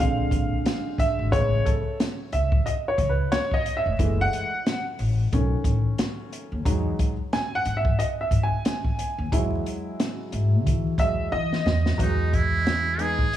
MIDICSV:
0, 0, Header, 1, 5, 480
1, 0, Start_track
1, 0, Key_signature, 4, "major"
1, 0, Tempo, 666667
1, 955, Time_signature, 4, 2, 24, 8
1, 9625, End_track
2, 0, Start_track
2, 0, Title_t, "Muted trumpet"
2, 0, Program_c, 0, 59
2, 8654, Note_on_c, 0, 63, 91
2, 8892, Note_on_c, 0, 64, 99
2, 8903, Note_off_c, 0, 63, 0
2, 9371, Note_on_c, 0, 68, 98
2, 9381, Note_off_c, 0, 64, 0
2, 9625, Note_off_c, 0, 68, 0
2, 9625, End_track
3, 0, Start_track
3, 0, Title_t, "Upright piano"
3, 0, Program_c, 1, 0
3, 0, Note_on_c, 1, 50, 52
3, 0, Note_on_c, 1, 56, 47
3, 0, Note_on_c, 1, 77, 91
3, 1, Note_on_c, 1, 60, 57
3, 688, Note_off_c, 1, 77, 0
3, 716, Note_on_c, 1, 76, 96
3, 924, Note_off_c, 1, 50, 0
3, 926, Note_off_c, 1, 56, 0
3, 929, Note_off_c, 1, 60, 0
3, 948, Note_on_c, 1, 49, 55
3, 951, Note_on_c, 1, 56, 53
3, 951, Note_on_c, 1, 73, 94
3, 955, Note_on_c, 1, 59, 59
3, 962, Note_off_c, 1, 76, 0
3, 1191, Note_on_c, 1, 69, 67
3, 1200, Note_off_c, 1, 73, 0
3, 1286, Note_off_c, 1, 49, 0
3, 1288, Note_off_c, 1, 56, 0
3, 1290, Note_off_c, 1, 59, 0
3, 1416, Note_off_c, 1, 69, 0
3, 1676, Note_on_c, 1, 76, 78
3, 1914, Note_on_c, 1, 75, 84
3, 1923, Note_off_c, 1, 76, 0
3, 1950, Note_off_c, 1, 75, 0
3, 2075, Note_on_c, 1, 73, 74
3, 2227, Note_on_c, 1, 71, 76
3, 2239, Note_off_c, 1, 73, 0
3, 2389, Note_on_c, 1, 73, 88
3, 2396, Note_off_c, 1, 71, 0
3, 2547, Note_on_c, 1, 75, 92
3, 2557, Note_off_c, 1, 73, 0
3, 2712, Note_on_c, 1, 76, 89
3, 2716, Note_off_c, 1, 75, 0
3, 2878, Note_on_c, 1, 52, 55
3, 2881, Note_on_c, 1, 56, 53
3, 2885, Note_on_c, 1, 57, 68
3, 3033, Note_on_c, 1, 78, 109
3, 3043, Note_off_c, 1, 76, 0
3, 3211, Note_off_c, 1, 52, 0
3, 3213, Note_off_c, 1, 56, 0
3, 3215, Note_off_c, 1, 57, 0
3, 3485, Note_off_c, 1, 78, 0
3, 3832, Note_on_c, 1, 51, 52
3, 3836, Note_on_c, 1, 57, 49
3, 3842, Note_on_c, 1, 61, 61
3, 4765, Note_off_c, 1, 51, 0
3, 4767, Note_off_c, 1, 57, 0
3, 4769, Note_off_c, 1, 61, 0
3, 4789, Note_on_c, 1, 54, 60
3, 4793, Note_on_c, 1, 56, 52
3, 4798, Note_on_c, 1, 63, 63
3, 5127, Note_off_c, 1, 54, 0
3, 5129, Note_off_c, 1, 56, 0
3, 5132, Note_off_c, 1, 63, 0
3, 5278, Note_on_c, 1, 80, 97
3, 5425, Note_off_c, 1, 80, 0
3, 5437, Note_on_c, 1, 78, 99
3, 5585, Note_off_c, 1, 78, 0
3, 5593, Note_on_c, 1, 76, 82
3, 5751, Note_on_c, 1, 75, 88
3, 5759, Note_off_c, 1, 76, 0
3, 5787, Note_off_c, 1, 75, 0
3, 5910, Note_on_c, 1, 76, 78
3, 6072, Note_on_c, 1, 80, 85
3, 6077, Note_off_c, 1, 76, 0
3, 6710, Note_on_c, 1, 54, 55
3, 6717, Note_on_c, 1, 56, 53
3, 6719, Note_on_c, 1, 64, 71
3, 6765, Note_off_c, 1, 80, 0
3, 7902, Note_off_c, 1, 54, 0
3, 7905, Note_off_c, 1, 56, 0
3, 7913, Note_on_c, 1, 54, 46
3, 7915, Note_on_c, 1, 56, 41
3, 7916, Note_on_c, 1, 76, 96
3, 7918, Note_on_c, 1, 75, 51
3, 8130, Note_off_c, 1, 54, 0
3, 8131, Note_off_c, 1, 56, 0
3, 8132, Note_off_c, 1, 75, 0
3, 8151, Note_on_c, 1, 75, 100
3, 8163, Note_off_c, 1, 76, 0
3, 8604, Note_off_c, 1, 75, 0
3, 8608, Note_off_c, 1, 64, 0
3, 8624, Note_on_c, 1, 54, 57
3, 8629, Note_on_c, 1, 59, 67
3, 8632, Note_on_c, 1, 75, 66
3, 8636, Note_on_c, 1, 66, 77
3, 8672, Note_on_c, 1, 56, 67
3, 8684, Note_off_c, 1, 54, 0
3, 9312, Note_off_c, 1, 59, 0
3, 9314, Note_off_c, 1, 75, 0
3, 9316, Note_off_c, 1, 66, 0
3, 9334, Note_off_c, 1, 56, 0
3, 9347, Note_on_c, 1, 56, 64
3, 9352, Note_on_c, 1, 59, 60
3, 9358, Note_on_c, 1, 63, 59
3, 9359, Note_on_c, 1, 68, 71
3, 9531, Note_off_c, 1, 56, 0
3, 9534, Note_off_c, 1, 59, 0
3, 9537, Note_off_c, 1, 63, 0
3, 9538, Note_off_c, 1, 68, 0
3, 9625, End_track
4, 0, Start_track
4, 0, Title_t, "Upright bass"
4, 0, Program_c, 2, 32
4, 0, Note_on_c, 2, 34, 91
4, 178, Note_off_c, 2, 34, 0
4, 227, Note_on_c, 2, 34, 81
4, 411, Note_off_c, 2, 34, 0
4, 856, Note_on_c, 2, 32, 81
4, 931, Note_off_c, 2, 32, 0
4, 956, Note_on_c, 2, 33, 104
4, 1136, Note_off_c, 2, 33, 0
4, 1678, Note_on_c, 2, 37, 81
4, 1858, Note_off_c, 2, 37, 0
4, 2147, Note_on_c, 2, 37, 75
4, 2330, Note_off_c, 2, 37, 0
4, 2778, Note_on_c, 2, 29, 78
4, 2851, Note_off_c, 2, 29, 0
4, 2873, Note_on_c, 2, 30, 95
4, 3055, Note_off_c, 2, 30, 0
4, 3594, Note_on_c, 2, 33, 91
4, 3775, Note_off_c, 2, 33, 0
4, 3837, Note_on_c, 2, 35, 98
4, 4017, Note_off_c, 2, 35, 0
4, 4063, Note_on_c, 2, 33, 83
4, 4249, Note_off_c, 2, 33, 0
4, 4693, Note_on_c, 2, 39, 81
4, 4769, Note_off_c, 2, 39, 0
4, 4791, Note_on_c, 2, 40, 102
4, 4974, Note_off_c, 2, 40, 0
4, 5512, Note_on_c, 2, 44, 82
4, 5694, Note_off_c, 2, 44, 0
4, 5984, Note_on_c, 2, 44, 83
4, 6169, Note_off_c, 2, 44, 0
4, 6613, Note_on_c, 2, 39, 88
4, 6688, Note_off_c, 2, 39, 0
4, 6712, Note_on_c, 2, 40, 103
4, 6894, Note_off_c, 2, 40, 0
4, 7435, Note_on_c, 2, 44, 80
4, 7680, Note_off_c, 2, 44, 0
4, 7680, Note_on_c, 2, 52, 108
4, 7859, Note_off_c, 2, 52, 0
4, 7905, Note_on_c, 2, 40, 81
4, 8090, Note_off_c, 2, 40, 0
4, 8152, Note_on_c, 2, 52, 92
4, 8334, Note_off_c, 2, 52, 0
4, 8393, Note_on_c, 2, 40, 95
4, 8574, Note_off_c, 2, 40, 0
4, 8635, Note_on_c, 2, 40, 101
4, 9566, Note_off_c, 2, 40, 0
4, 9625, End_track
5, 0, Start_track
5, 0, Title_t, "Drums"
5, 0, Note_on_c, 9, 36, 85
5, 0, Note_on_c, 9, 42, 80
5, 69, Note_off_c, 9, 36, 0
5, 69, Note_off_c, 9, 42, 0
5, 225, Note_on_c, 9, 36, 92
5, 229, Note_on_c, 9, 42, 65
5, 297, Note_off_c, 9, 36, 0
5, 301, Note_off_c, 9, 42, 0
5, 472, Note_on_c, 9, 42, 90
5, 478, Note_on_c, 9, 38, 112
5, 544, Note_off_c, 9, 42, 0
5, 550, Note_off_c, 9, 38, 0
5, 708, Note_on_c, 9, 36, 88
5, 716, Note_on_c, 9, 42, 79
5, 780, Note_off_c, 9, 36, 0
5, 788, Note_off_c, 9, 42, 0
5, 954, Note_on_c, 9, 36, 98
5, 958, Note_on_c, 9, 42, 88
5, 1026, Note_off_c, 9, 36, 0
5, 1030, Note_off_c, 9, 42, 0
5, 1197, Note_on_c, 9, 36, 91
5, 1198, Note_on_c, 9, 42, 75
5, 1269, Note_off_c, 9, 36, 0
5, 1270, Note_off_c, 9, 42, 0
5, 1440, Note_on_c, 9, 42, 81
5, 1442, Note_on_c, 9, 38, 121
5, 1512, Note_off_c, 9, 42, 0
5, 1514, Note_off_c, 9, 38, 0
5, 1674, Note_on_c, 9, 42, 76
5, 1746, Note_off_c, 9, 42, 0
5, 1814, Note_on_c, 9, 36, 99
5, 1886, Note_off_c, 9, 36, 0
5, 1918, Note_on_c, 9, 42, 81
5, 1990, Note_off_c, 9, 42, 0
5, 2146, Note_on_c, 9, 36, 93
5, 2148, Note_on_c, 9, 42, 71
5, 2218, Note_off_c, 9, 36, 0
5, 2220, Note_off_c, 9, 42, 0
5, 2389, Note_on_c, 9, 42, 94
5, 2395, Note_on_c, 9, 38, 104
5, 2461, Note_off_c, 9, 42, 0
5, 2467, Note_off_c, 9, 38, 0
5, 2530, Note_on_c, 9, 36, 81
5, 2602, Note_off_c, 9, 36, 0
5, 2634, Note_on_c, 9, 42, 79
5, 2706, Note_off_c, 9, 42, 0
5, 2873, Note_on_c, 9, 36, 98
5, 2875, Note_on_c, 9, 42, 86
5, 2945, Note_off_c, 9, 36, 0
5, 2947, Note_off_c, 9, 42, 0
5, 3117, Note_on_c, 9, 42, 74
5, 3189, Note_off_c, 9, 42, 0
5, 3358, Note_on_c, 9, 42, 79
5, 3360, Note_on_c, 9, 38, 124
5, 3430, Note_off_c, 9, 42, 0
5, 3432, Note_off_c, 9, 38, 0
5, 3591, Note_on_c, 9, 46, 55
5, 3663, Note_off_c, 9, 46, 0
5, 3835, Note_on_c, 9, 42, 80
5, 3836, Note_on_c, 9, 36, 86
5, 3907, Note_off_c, 9, 42, 0
5, 3908, Note_off_c, 9, 36, 0
5, 4063, Note_on_c, 9, 36, 94
5, 4066, Note_on_c, 9, 42, 69
5, 4135, Note_off_c, 9, 36, 0
5, 4138, Note_off_c, 9, 42, 0
5, 4309, Note_on_c, 9, 42, 84
5, 4314, Note_on_c, 9, 38, 109
5, 4381, Note_off_c, 9, 42, 0
5, 4386, Note_off_c, 9, 38, 0
5, 4554, Note_on_c, 9, 42, 83
5, 4626, Note_off_c, 9, 42, 0
5, 4791, Note_on_c, 9, 36, 106
5, 4795, Note_on_c, 9, 42, 92
5, 4863, Note_off_c, 9, 36, 0
5, 4867, Note_off_c, 9, 42, 0
5, 5034, Note_on_c, 9, 36, 89
5, 5034, Note_on_c, 9, 42, 76
5, 5106, Note_off_c, 9, 36, 0
5, 5106, Note_off_c, 9, 42, 0
5, 5276, Note_on_c, 9, 42, 83
5, 5279, Note_on_c, 9, 38, 127
5, 5348, Note_off_c, 9, 42, 0
5, 5351, Note_off_c, 9, 38, 0
5, 5510, Note_on_c, 9, 42, 76
5, 5582, Note_off_c, 9, 42, 0
5, 5651, Note_on_c, 9, 36, 95
5, 5723, Note_off_c, 9, 36, 0
5, 5757, Note_on_c, 9, 42, 85
5, 5829, Note_off_c, 9, 42, 0
5, 5983, Note_on_c, 9, 36, 90
5, 5986, Note_on_c, 9, 42, 69
5, 6055, Note_off_c, 9, 36, 0
5, 6058, Note_off_c, 9, 42, 0
5, 6229, Note_on_c, 9, 42, 92
5, 6234, Note_on_c, 9, 38, 109
5, 6301, Note_off_c, 9, 42, 0
5, 6306, Note_off_c, 9, 38, 0
5, 6368, Note_on_c, 9, 36, 79
5, 6440, Note_off_c, 9, 36, 0
5, 6472, Note_on_c, 9, 42, 88
5, 6544, Note_off_c, 9, 42, 0
5, 6711, Note_on_c, 9, 36, 102
5, 6714, Note_on_c, 9, 42, 100
5, 6783, Note_off_c, 9, 36, 0
5, 6786, Note_off_c, 9, 42, 0
5, 6957, Note_on_c, 9, 42, 72
5, 7029, Note_off_c, 9, 42, 0
5, 7198, Note_on_c, 9, 42, 86
5, 7200, Note_on_c, 9, 38, 127
5, 7270, Note_off_c, 9, 42, 0
5, 7272, Note_off_c, 9, 38, 0
5, 7433, Note_on_c, 9, 42, 75
5, 7505, Note_off_c, 9, 42, 0
5, 7679, Note_on_c, 9, 36, 83
5, 7680, Note_on_c, 9, 42, 79
5, 7751, Note_off_c, 9, 36, 0
5, 7752, Note_off_c, 9, 42, 0
5, 7906, Note_on_c, 9, 36, 95
5, 7909, Note_on_c, 9, 42, 70
5, 7978, Note_off_c, 9, 36, 0
5, 7981, Note_off_c, 9, 42, 0
5, 8299, Note_on_c, 9, 38, 60
5, 8371, Note_off_c, 9, 38, 0
5, 8399, Note_on_c, 9, 38, 97
5, 8471, Note_off_c, 9, 38, 0
5, 8538, Note_on_c, 9, 38, 84
5, 8610, Note_off_c, 9, 38, 0
5, 8634, Note_on_c, 9, 36, 91
5, 8637, Note_on_c, 9, 42, 96
5, 8706, Note_off_c, 9, 36, 0
5, 8709, Note_off_c, 9, 42, 0
5, 8878, Note_on_c, 9, 36, 83
5, 8880, Note_on_c, 9, 42, 72
5, 8950, Note_off_c, 9, 36, 0
5, 8952, Note_off_c, 9, 42, 0
5, 9120, Note_on_c, 9, 42, 79
5, 9122, Note_on_c, 9, 38, 119
5, 9192, Note_off_c, 9, 42, 0
5, 9194, Note_off_c, 9, 38, 0
5, 9353, Note_on_c, 9, 42, 73
5, 9425, Note_off_c, 9, 42, 0
5, 9494, Note_on_c, 9, 36, 94
5, 9566, Note_off_c, 9, 36, 0
5, 9600, Note_on_c, 9, 42, 82
5, 9625, Note_off_c, 9, 42, 0
5, 9625, End_track
0, 0, End_of_file